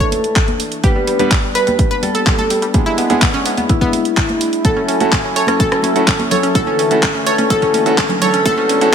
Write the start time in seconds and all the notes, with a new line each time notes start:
Already playing: E3 A3 D4 A4
0.00 C#5, kick, closed hi-hat
0.12 F#2, open hi-hat, high conga
0.24 C#2, closed hi-hat
0.36 kick, clap, closed hi-hat
0.48 closed hi-hat, high conga
0.60 open hi-hat
0.72 F#1, closed hi-hat
0.83 G3 B3 D4 G4 B4, kick, closed hi-hat, high conga
0.96 G3
1.07 F#1 G3, open hi-hat
1.19 G3 B3 D4 G4 B4, closed hi-hat, high conga
1.31 G3, kick, clap, closed hi-hat
1.43 G3
1.55 B4, open hi-hat
1.67 G3, closed hi-hat, high conga
1.79 G3, kick, closed hi-hat
1.91 B4, closed hi-hat
2.02 G3 A4, open hi-hat, high conga
2.15 F#1 A4, closed hi-hat
2.27 G3, kick, clap, closed hi-hat
2.38 A4, closed hi-hat, high conga
2.50 G3, open hi-hat
2.62 F#1 G3, closed hi-hat
2.74 G3 G#3 B3 D4 E4 G#4, kick, closed hi-hat, high conga
2.86 E4
2.98 B3, open hi-hat
3.10 G#3 B3 D4 E4 G#4, closed hi-hat, high conga
3.22 B3, kick, clap, closed hi-hat
3.34 C#4
3.46 B3, open hi-hat
3.57 B3, closed hi-hat, high conga
3.69 B3 E4, kick, closed hi-hat
3.81 B3, kick, closed hi-hat
3.92 F#2, open hi-hat, high conga
4.05 C#2, closed hi-hat
4.17 kick, clap, closed hi-hat
4.29 closed hi-hat, high conga
4.41 open hi-hat
4.53 F#1, closed hi-hat
4.65 F#3 A3 C#4 E4 F#4 A4 G#5, kick, closed hi-hat, riser, high conga
4.77 C#4
4.88 C#4, open hi-hat
5.00 F#1 A3 C#4 E4 F#4 A4, closed hi-hat, high conga
5.12 C#4, kick, clap, closed hi-hat
5.24 C#4
5.36 A4 C#5, open hi-hat
5.47 C#4, cross-stick, closed hi-hat, high conga
5.60 A3 C#4 E4 F#4 A4, kick, closed hi-hat
5.72 C#4, cross-stick, closed hi-hat
5.82 C#4, open hi-hat, high conga
5.96 A3 C#4 E4 F#4 A4, closed hi-hat
6.07 C#4, kick, clap, closed hi-hat
6.19 C#4, closed hi-hat, high conga
6.31 A4 C#5, open hi-hat, low conga
6.43 C#4, closed hi-hat
6.55 D3 E3 A3 C#4 E4 F#4 A4, kick, closed hi-hat, high conga
6.67 C#4
6.79 C#4, open hi-hat
6.91 A3 C#4 E4 F#4 A4, closed hi-hat, high conga
7.03 C#4, kick, clap, closed hi-hat
7.15 C#4
7.26 A4 C#5, open hi-hat
7.38 C#4, closed hi-hat, high conga
7.50 A3 C#4 E4 F#4 A4, kick, closed hi-hat
7.62 C#4, kick, closed hi-hat
7.74 F#2 C#4, open hi-hat, high conga
7.86 C#2 A3 C#4 E4 F#4 A4, closed hi-hat
7.98 C#4, kick, clap, closed hi-hat
8.09 C#4, closed hi-hat, high conga, low conga
8.22 A4 C#5, open hi-hat, low conga
8.34 C#4, closed hi-hat
8.45 G3 A3 B3 C#4 E4 F#4 A4, kick, closed hi-hat, high conga
8.58 C#4
8.69 C#4, open hi-hat
8.81 A3 C#4 E4 F#4 A4, closed hi-hat, high conga